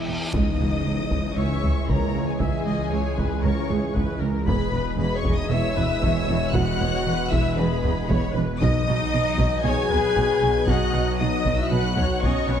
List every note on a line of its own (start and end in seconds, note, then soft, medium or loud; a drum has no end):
0.00 0.29 E3 medium
0.00 0.33 B3 medium
0.00 0.30 E4 medium
0.00 0.29 G#4 medium
0.00 0.30 E5 medium
0.00 0.33 E5 medium
0.00 0.29 E6 medium
0.00 reverse cymbal medium
0.07 0.15 E1 soft
0.07 0.16 E2 soft
0.07 0.15 E3 soft
0.33 0.41 C#2 medium
0.33 4.48 C#2 medium
0.33 0.42 C#2 medium
0.33 4.43 E3 medium
0.33 4.44 E3 medium
0.33 4.43 G#3 medium
0.33 1.37 D#4 medium
0.33 4.44 G#4 medium
0.33 4.44 C#5 medium
0.33 1.35 D#5 loud
0.33 1.35 D#6 loud
0.33 taiko medium
0.33 impact medium
0.59 0.67 C#2 medium
0.59 0.68 C#2 medium
0.85 0.93 C#2 medium
0.85 0.94 C#2 medium
1.11 1.19 C#2 medium
1.11 taiko medium
1.36 1.45 C#2 medium
1.36 1.88 C#4 medium
1.36 1.89 C#5 medium
1.36 1.85 E5 medium
1.36 1.88 C#6 loud
1.63 1.71 C#2 medium
1.63 taiko low medium
1.88 1.96 C#2 medium
1.88 1.97 C#2 medium
1.88 2.28 A#3 medium
1.88 2.26 A#4 medium
1.88 2.40 C#5 medium
1.88 2.28 A#5 loud
1.88 taiko medium
2.14 2.22 C#2 medium
2.14 2.23 C#2 medium
2.28 2.39 G#3 medium
2.28 2.39 G#4 medium
2.28 2.39 G#5 medium
2.40 2.48 C#2 medium
2.40 2.49 C#2 medium
2.40 3.42 G#3 loud
2.40 3.42 G#4 medium
2.40 2.66 E5 medium
2.40 3.42 G#5 loud
2.40 taiko loud
2.65 2.73 C#2 medium
2.65 2.74 C#2 medium
2.65 2.91 D#5 medium
2.91 2.99 C#2 medium
2.91 3.00 C#2 medium
2.91 3.17 C#5 medium
3.17 3.25 C#2 medium
3.17 3.26 C#2 medium
3.17 3.44 B4 medium
3.17 taiko medium
3.42 3.51 C#2 medium
3.42 3.95 C#4 medium
3.42 3.69 A#4 medium
3.42 3.95 C#5 medium
3.42 3.95 C#6 medium
3.69 3.77 C#2 medium
3.69 3.78 C#2 medium
3.69 3.95 G#4 medium
3.69 taiko low medium
3.94 4.02 C#2 medium
3.94 4.04 C#2 medium
3.94 4.21 B4 medium
3.94 taiko medium
4.20 4.28 C#2 medium
4.20 4.30 C#2 medium
4.20 4.47 A#4 medium
4.46 8.63 E1 medium
4.46 4.54 E1 medium
4.46 4.55 E2 medium
4.46 8.44 B2 medium
4.46 8.57 E3 medium
4.46 8.44 G#3 medium
4.46 4.95 B3 medium
4.46 8.59 B3 medium
4.46 8.57 G#4 medium
4.46 4.73 G#4 medium
4.46 4.95 B4 loud
4.46 8.60 B4 medium
4.46 4.96 B5 loud
4.46 taiko loud
4.72 4.80 E1 medium
4.72 4.81 E2 medium
4.72 4.99 B4 medium
4.98 5.06 E1 medium
4.98 5.08 E2 medium
4.98 5.15 B3 medium
4.98 5.50 G#4 medium
4.98 5.15 B4 medium
4.98 5.16 B5 loud
5.15 5.34 C#4 medium
5.15 5.33 C#5 loud
5.15 5.34 C#6 loud
5.24 5.32 E1 medium
5.24 5.34 E2 medium
5.24 taiko medium
5.32 5.51 D#4 loud
5.32 5.50 D#5 loud
5.32 5.52 D#6 loud
5.50 5.58 E1 loud
5.50 5.59 E2 medium
5.50 6.52 E4 loud
5.50 5.77 C#5 loud
5.50 6.54 E5 loud
5.50 6.53 E6 loud
5.76 5.84 E1 medium
5.76 5.85 E2 medium
5.76 6.03 B4 medium
5.76 taiko low medium
6.02 6.10 E1 loud
6.02 6.11 E2 medium
6.02 6.54 C#5 loud
6.02 taiko medium
6.28 6.36 E1 medium
6.28 6.37 E2 medium
6.53 6.62 E1 loud
6.53 6.64 E2 loud
6.53 7.32 F#4 loud
6.53 6.80 B4 medium
6.53 7.30 F#5 loud
6.53 7.32 F#6 loud
6.53 taiko loud
6.80 6.88 E1 medium
6.80 6.89 E2 medium
6.80 7.06 C#5 loud
7.06 7.14 E1 loud
7.06 7.14 E2 medium
7.06 7.57 B4 medium
7.31 7.40 E1 medium
7.31 7.40 E2 medium
7.31 7.57 E4 loud
7.31 7.57 E5 loud
7.31 7.57 E6 loud
7.31 taiko medium
7.57 7.65 E1 loud
7.57 7.66 E2 loud
7.57 8.34 B3 loud
7.57 8.10 G#4 loud
7.57 8.35 B4 loud
7.57 8.34 B5 loud
7.83 7.91 E1 loud
7.83 7.92 E2 loud
7.83 taiko low medium
8.09 8.17 E1 loud
8.09 8.18 E2 loud
8.09 8.35 C#5 loud
8.09 taiko medium
8.35 8.43 E1 medium
8.35 8.44 E2 medium
8.35 8.61 B4 medium
8.59 12.60 B1 medium
8.59 8.69 B1 loud
8.59 12.60 B2 medium
8.59 8.69 B2 loud
8.59 12.60 F#3 medium
8.59 12.60 B3 loud
8.59 9.61 D#4 loud
8.59 12.60 F#4 medium
8.59 12.60 B4 medium
8.59 9.60 D#5 loud
8.59 9.62 D#5 loud
8.59 9.59 D#6 loud
8.59 taiko loud
8.87 8.95 B1 loud
8.87 8.95 B2 medium
9.12 9.20 B1 medium
9.12 9.21 B2 medium
9.38 9.47 B1 medium
9.38 9.46 B2 medium
9.38 taiko medium
9.63 9.73 B1 loud
9.63 9.72 B2 loud
9.63 10.66 G#4 loud
9.63 9.90 C#5 loud
9.63 10.67 G#5 loud
9.63 10.68 G#6 loud
9.90 9.98 B1 loud
9.90 9.99 B2 loud
9.90 10.67 B4 loud
9.90 taiko low medium
10.16 10.25 B1 loud
10.16 10.25 B2 medium
10.16 taiko medium
10.42 10.50 B1 loud
10.42 10.50 B2 medium
10.67 10.76 B1 loud
10.67 10.76 B2 loud
10.67 11.19 F#4 loud
10.67 11.18 D#5 loud
10.67 11.19 F#5 loud
10.67 11.19 F#6 loud
10.67 taiko loud
10.94 11.02 B1 medium
10.94 11.02 B2 medium
10.94 taiko rim soft
11.19 11.27 B1 medium
11.19 11.28 B2 medium
11.19 11.59 D#4 loud
11.19 11.58 D#5 loud
11.19 11.70 D#5 loud
11.19 11.57 D#6 loud
11.45 11.53 B1 medium
11.45 11.53 B2 medium
11.45 taiko medium
11.59 11.71 E4 medium
11.59 11.72 E5 loud
11.59 11.72 E6 loud
11.70 11.79 B1 loud
11.70 11.80 B2 medium
11.70 12.23 F#4 loud
11.70 11.97 B4 loud
11.70 12.22 F#5 loud
11.70 12.23 F#6 loud
11.97 12.05 B1 medium
11.97 12.05 B2 medium
11.97 12.24 C#5 loud
11.97 taiko low medium
12.22 12.31 B1 loud
12.22 12.31 B2 medium
12.22 12.60 C#4 loud
12.22 12.60 C#5 loud
12.22 12.49 D#5 loud
12.22 12.60 C#6 loud
12.22 taiko medium
12.48 12.57 B1 medium
12.48 12.56 B2 medium
12.48 12.60 B4 medium
12.48 taiko rim soft